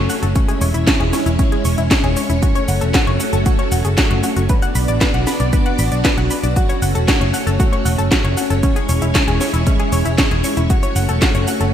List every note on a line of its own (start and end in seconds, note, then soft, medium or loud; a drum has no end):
0.00 0.34 A3 medium
0.00 4.45 C#4 medium
0.00 0.34 F#4 medium
0.00 0.34 C#5 loud
0.10 0.14 F#5 medium
0.10 open hi-hat loud
0.10 cabasa medium
0.23 0.33 F#1 medium
0.23 0.34 A4 medium
0.23 closed hi-hat soft
0.23 cabasa soft
0.35 2.40 G#3 medium
0.35 0.43 C#4 medium
0.35 2.40 E4 medium
0.35 4.45 C#5 medium
0.35 kick loud
0.35 closed hi-hat medium
0.35 cabasa soft
0.48 0.60 G#4 medium
0.48 closed hi-hat soft
0.48 cabasa soft
0.61 0.72 E1 medium
0.61 0.66 C#5 medium
0.61 open hi-hat loud
0.61 cabasa medium
0.74 0.84 E1 medium
0.74 0.86 E4 medium
0.74 closed hi-hat soft
0.74 cabasa soft
0.87 0.95 C#4 medium
0.87 kick loud
0.87 snare loud
0.87 clap loud
0.87 closed hi-hat medium
0.87 cabasa soft
1.00 1.10 E1 medium
1.00 1.11 G#4 medium
1.00 closed hi-hat soft
1.13 1.18 C#5 medium
1.13 snare medium
1.13 open hi-hat loud
1.13 cabasa medium
1.26 1.36 E1 medium
1.26 1.37 E4 medium
1.26 closed hi-hat soft
1.26 cabasa soft
1.39 1.47 C#4 medium
1.39 kick loud
1.39 closed hi-hat medium
1.39 cabasa soft
1.52 1.63 G#4 medium
1.52 closed hi-hat soft
1.65 1.75 E1 medium
1.65 1.69 C#5 medium
1.65 open hi-hat loud
1.65 cabasa medium
1.78 1.88 E1 medium
1.78 1.89 E4 medium
1.78 closed hi-hat soft
1.78 cabasa soft
1.91 1.98 C#4 medium
1.91 kick loud
1.91 snare loud
1.91 clap loud
1.91 closed hi-hat medium
1.91 cabasa soft
2.04 2.14 E1 medium
2.04 2.15 G#4 medium
2.04 closed hi-hat soft
2.17 2.21 C#5 medium
2.17 open hi-hat loud
2.17 cabasa medium
2.30 2.40 E1 medium
2.30 2.41 E4 medium
2.30 closed hi-hat soft
2.30 cabasa soft
2.42 4.47 A3 medium
2.42 2.50 F#4 medium
2.42 4.47 F#4 medium
2.42 kick loud
2.42 closed hi-hat medium
2.42 cabasa soft
2.55 2.67 C#5 medium
2.55 closed hi-hat soft
2.55 cabasa soft
2.68 2.79 F#1 medium
2.68 2.73 F#5 medium
2.68 open hi-hat loud
2.68 cabasa medium
2.81 2.91 E1 medium
2.81 2.93 A4 medium
2.81 closed hi-hat soft
2.81 cabasa soft
2.94 3.02 F#4 medium
2.94 kick loud
2.94 snare loud
2.94 clap loud
2.94 closed hi-hat medium
2.94 cabasa soft
3.07 3.17 F#1 medium
3.07 3.18 C#5 medium
3.07 closed hi-hat soft
3.20 3.25 F#5 medium
3.20 open hi-hat loud
3.20 cabasa medium
3.33 3.43 F#1 medium
3.33 3.44 A4 medium
3.33 closed hi-hat soft
3.33 cabasa soft
3.46 3.53 F#4 medium
3.46 kick loud
3.46 closed hi-hat medium
3.46 cabasa soft
3.59 3.70 C#5 medium
3.59 closed hi-hat soft
3.72 3.82 E1 medium
3.72 3.79 F#5 medium
3.72 open hi-hat loud
3.72 cabasa medium
3.85 3.95 F#1 medium
3.85 3.92 G#4 medium
3.85 closed hi-hat soft
3.85 cabasa soft
3.98 4.05 F#4 loud
3.98 kick loud
3.98 snare loud
3.98 clap loud
3.98 closed hi-hat medium
3.98 cabasa soft
4.11 4.21 F#1 medium
4.11 4.22 F#4 medium
4.11 closed hi-hat soft
4.24 4.35 F#4 medium
4.24 open hi-hat loud
4.24 cabasa medium
4.37 4.47 F#1 medium
4.37 4.44 F#4 medium
4.37 closed hi-hat soft
4.37 cabasa soft
4.49 6.54 B3 medium
4.49 6.54 D4 medium
4.49 8.59 F#4 medium
4.49 4.57 B4 medium
4.49 6.54 D5 loud
4.49 kick loud
4.49 closed hi-hat medium
4.49 cabasa soft
4.62 4.74 F#5 medium
4.62 closed hi-hat soft
4.62 cabasa soft
4.75 4.85 B1 medium
4.75 4.80 B5 medium
4.75 open hi-hat loud
4.75 cabasa medium
4.88 4.98 A1 medium
4.88 5.00 D5 medium
4.88 closed hi-hat soft
4.88 cabasa soft
5.01 5.09 B4 medium
5.01 kick loud
5.01 snare loud
5.01 clap loud
5.01 closed hi-hat medium
5.01 cabasa soft
5.14 5.24 B1 medium
5.14 5.25 F#5 medium
5.14 closed hi-hat soft
5.27 5.32 B5 medium
5.27 snare medium
5.27 open hi-hat loud
5.27 cabasa medium
5.40 5.50 B1 medium
5.40 5.51 D5 medium
5.40 closed hi-hat soft
5.40 cabasa soft
5.53 5.60 B4 medium
5.53 kick loud
5.53 closed hi-hat medium
5.53 cabasa soft
5.66 5.77 F#5 medium
5.66 closed hi-hat soft
5.79 5.89 A1 loud
5.79 5.83 B5 medium
5.79 open hi-hat loud
5.79 cabasa medium
5.92 6.02 B1 medium
5.92 6.03 D5 medium
5.92 closed hi-hat soft
5.92 cabasa soft
6.05 6.12 B4 medium
6.05 kick loud
6.05 snare loud
6.05 clap loud
6.05 closed hi-hat medium
6.05 cabasa soft
6.18 6.28 B1 medium
6.18 6.29 F#5 medium
6.18 closed hi-hat soft
6.31 6.35 B5 medium
6.31 open hi-hat loud
6.31 cabasa medium
6.43 6.53 B1 medium
6.43 6.55 D5 medium
6.43 closed hi-hat soft
6.43 cabasa soft
6.56 8.61 A3 medium
6.56 10.66 C#4 medium
6.56 6.64 F#4 medium
6.56 11.74 C#5 loud
6.56 kick loud
6.56 closed hi-hat medium
6.56 cabasa soft
6.69 6.80 C#5 medium
6.69 closed hi-hat soft
6.69 cabasa soft
6.82 6.92 F#1 medium
6.82 6.87 F#5 medium
6.82 open hi-hat loud
6.82 cabasa medium
6.95 7.05 E1 medium
6.95 7.06 A4 medium
6.95 closed hi-hat soft
6.95 cabasa soft
7.08 7.15 F#4 medium
7.08 kick loud
7.08 snare loud
7.08 clap loud
7.08 closed hi-hat medium
7.08 cabasa soft
7.21 7.31 F#1 medium
7.21 7.32 C#5 medium
7.21 closed hi-hat soft
7.34 7.38 F#5 medium
7.34 open hi-hat loud
7.34 cabasa medium
7.47 7.57 F#1 medium
7.47 7.58 A4 medium
7.47 closed hi-hat soft
7.47 cabasa soft
7.60 7.67 F#4 medium
7.60 kick loud
7.60 closed hi-hat medium
7.60 cabasa soft
7.73 7.84 C#5 medium
7.73 closed hi-hat soft
7.85 7.96 E1 loud
7.85 7.90 F#5 medium
7.85 open hi-hat loud
7.85 cabasa medium
7.98 8.09 F#1 medium
7.98 8.10 A4 medium
7.98 closed hi-hat soft
7.98 cabasa soft
8.11 8.19 F#4 medium
8.11 kick loud
8.11 snare loud
8.11 clap medium
8.11 closed hi-hat medium
8.11 cabasa soft
8.24 8.34 F#1 medium
8.24 8.36 C#5 medium
8.24 closed hi-hat soft
8.37 8.42 F#5 medium
8.37 open hi-hat loud
8.37 cabasa medium
8.50 8.60 F#1 medium
8.50 8.61 A4 medium
8.50 closed hi-hat soft
8.50 cabasa soft
8.63 10.68 G#3 medium
8.63 8.71 C#4 medium
8.63 10.68 E4 medium
8.63 kick loud
8.63 closed hi-hat medium
8.63 cabasa soft
8.76 8.87 G#4 medium
8.76 closed hi-hat soft
8.76 cabasa soft
8.89 8.99 E1 loud
8.89 8.94 C#5 medium
8.89 open hi-hat loud
8.89 cabasa medium
9.02 9.12 E1 medium
9.02 9.13 E4 medium
9.02 closed hi-hat soft
9.02 cabasa soft
9.15 9.22 C#4 medium
9.15 kick loud
9.15 snare loud
9.15 clap loud
9.15 closed hi-hat medium
9.15 cabasa soft
9.28 9.38 E1 medium
9.28 9.39 G#4 medium
9.28 closed hi-hat soft
9.41 9.45 C#5 medium
9.41 snare medium
9.41 open hi-hat loud
9.41 cabasa medium
9.54 9.64 E1 medium
9.54 9.65 E4 medium
9.54 closed hi-hat soft
9.54 cabasa soft
9.67 9.74 C#4 medium
9.67 kick loud
9.67 closed hi-hat medium
9.67 cabasa soft
9.80 9.91 G#4 medium
9.80 closed hi-hat soft
9.92 10.03 E1 loud
9.92 9.97 C#5 medium
9.92 open hi-hat loud
9.92 cabasa medium
10.05 10.15 E1 medium
10.05 10.17 E4 medium
10.05 closed hi-hat soft
10.05 cabasa soft
10.18 10.26 C#4 medium
10.18 kick loud
10.18 snare loud
10.18 clap loud
10.18 closed hi-hat medium
10.18 cabasa soft
10.31 10.41 E1 medium
10.31 10.42 G#4 medium
10.31 closed hi-hat soft
10.44 10.49 C#5 medium
10.44 open hi-hat loud
10.44 cabasa medium
10.57 10.67 E1 medium
10.57 10.68 E4 medium
10.57 closed hi-hat soft
10.57 cabasa soft
10.70 11.74 A3 medium
10.70 11.74 C#4 medium
10.70 10.77 F#4 medium
10.70 11.74 F#4 medium
10.70 kick loud
10.70 closed hi-hat medium
10.70 cabasa soft
10.83 10.94 C#5 medium
10.83 closed hi-hat soft
10.83 cabasa soft
10.96 11.06 F#1 loud
10.96 11.00 F#5 medium
10.96 open hi-hat loud
10.96 cabasa medium
11.09 11.19 E1 medium
11.09 11.20 A4 medium
11.09 closed hi-hat soft
11.09 cabasa soft
11.22 11.29 F#4 medium
11.22 kick loud
11.22 snare loud
11.22 clap loud
11.22 closed hi-hat medium
11.22 cabasa soft
11.35 11.45 F#1 medium
11.35 11.46 C#5 medium
11.35 closed hi-hat soft
11.35 cabasa soft
11.48 11.52 F#5 medium
11.48 open hi-hat loud
11.48 cabasa medium
11.61 11.71 F#1 medium
11.61 11.72 A4 medium
11.61 closed hi-hat soft
11.61 cabasa soft